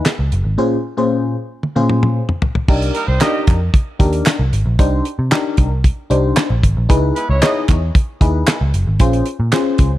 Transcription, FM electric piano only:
0.00 0.11 D#4 medium
0.00 0.11 E4 medium
0.00 0.11 G#4 medium
0.00 0.11 B4 loud
0.58 0.77 A#2 medium
0.58 0.77 C#4 medium
0.58 0.77 F4 medium
0.58 0.77 G#4 medium
0.58 0.77 C5 medium
0.97 1.36 A#2 medium
0.97 1.36 C#4 medium
0.97 1.36 F4 medium
0.97 1.36 G#4 medium
0.97 1.36 C5 medium
1.75 2.21 A#2 medium
1.75 2.21 C#4 medium
1.75 2.21 F4 medium
1.75 2.21 G#4 medium
1.75 2.21 C5 medium
2.68 2.94 D4 medium
2.68 2.94 D#4 medium
2.68 2.94 G4 medium
2.68 2.94 A#4 loud
3.21 3.59 D4 medium
3.21 3.60 D#4 medium
3.21 3.60 G4 medium
3.21 3.60 A#4 loud
3.99 4.38 D4 medium
3.99 4.38 D#4 medium
3.99 4.38 G4 medium
3.99 4.39 A#4 medium
4.79 5.05 D4 medium
4.79 5.05 D#4 medium
4.79 5.05 G4 medium
4.79 5.05 C5 loud
5.31 5.70 D4 medium
5.31 5.70 D#4 medium
5.31 5.70 G4 medium
5.31 5.70 A#4 medium
6.10 6.49 D4 medium
6.10 6.49 D#4 medium
6.10 6.49 G4 medium
6.10 6.49 C5 medium
6.89 7.15 D#4 medium
6.89 7.15 E4 medium
6.89 7.15 G#4 medium
6.89 7.15 B4 loud
7.42 7.80 D#4 medium
7.42 7.81 E4 medium
7.42 7.81 G#4 medium
7.42 7.81 C#5 medium
8.21 8.59 D#4 medium
8.21 8.60 E4 medium
8.21 8.60 G#4 medium
8.21 8.60 B4 medium
9.00 9.26 C#4 medium
9.00 9.26 F4 medium
9.00 9.26 G#4 medium
9.00 9.26 C5 medium
9.52 9.91 C#4 medium
9.52 9.91 F4 medium
9.52 9.91 G#4 medium
9.52 9.91 C5 medium

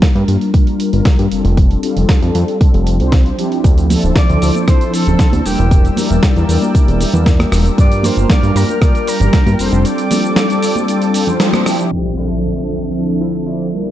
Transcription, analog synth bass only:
0.15 0.24 G2 loud
0.28 0.37 G2 medium
0.93 1.02 G1 medium
1.19 1.27 G2 medium
1.32 1.42 F1 soft
1.45 1.77 F1 loud
1.97 2.05 F1 medium
2.22 2.31 F2 medium
2.35 2.44 F2 medium
2.74 3.02 F1 loud
3.00 3.32 C2 loud
3.64 3.96 D2 loud
4.04 4.12 D1 medium
4.30 4.38 D2 loud
4.42 4.51 D2 medium
5.07 5.16 D1 medium
5.33 5.41 D2 medium
5.46 5.56 E1 soft
5.59 5.91 E1 loud
6.11 6.19 E1 medium
6.36 6.45 E2 loud
6.49 6.58 E2 medium
6.88 7.05 E1 loud
7.14 7.46 E2 medium
7.52 7.70 E1 loud
7.78 8.10 G2 loud
8.17 8.26 G1 medium
8.43 8.51 G2 loud
8.55 8.65 G2 medium
9.21 9.29 G1 medium
9.46 9.55 G2 medium
9.59 9.70 F1 soft
9.72 9.85 F1 loud

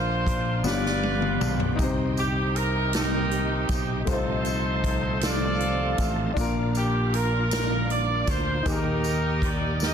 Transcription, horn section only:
0.00 0.63 F4 medium
0.00 0.63 C5 medium
0.67 1.77 F4 medium
0.67 1.76 B4 medium
0.67 1.52 D5 loud
2.18 2.53 G4 medium
2.55 2.94 A#4 loud
2.95 4.05 D#4 medium
2.95 4.05 G4 medium
2.95 3.66 A#4 loud
4.09 5.19 D#4 medium
4.09 5.19 A4 medium
4.09 5.19 C5 loud
5.23 6.33 F4 loud
5.23 6.33 A4 medium
5.23 6.09 D5 loud
6.77 7.11 G4 medium
7.14 7.51 A#4 medium
7.52 7.87 A#4 loud
7.91 8.28 D5 medium
8.29 8.66 C5 medium
8.68 9.77 D#4 medium
8.68 9.77 G4 medium
8.68 9.43 A#4 loud
9.46 9.82 D5 loud
9.84 9.94 G4 medium
9.84 9.94 A#4 medium
9.84 9.94 D#5 loud

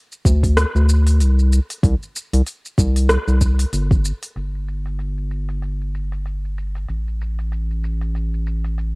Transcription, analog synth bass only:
0.25 0.65 D2 medium
0.75 1.22 D2 medium
1.20 1.60 C2 medium
1.83 1.95 C2 loud
2.33 2.42 C2 medium
2.78 3.18 C2 medium
3.28 3.65 C2 medium
3.73 4.12 G1 medium
4.36 6.86 G1 medium
6.89 8.95 A1 medium

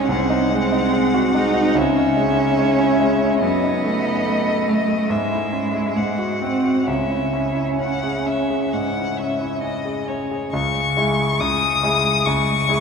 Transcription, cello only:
0.09 1.32 C4 medium
1.34 1.77 D#4 medium
1.76 3.42 C#4 medium
3.43 4.69 B3 medium
4.68 5.11 A3 medium
5.10 6.43 G#3 medium
6.42 6.87 C4 medium
6.88 9.59 C#4 soft
10.53 12.80 G#3 soft

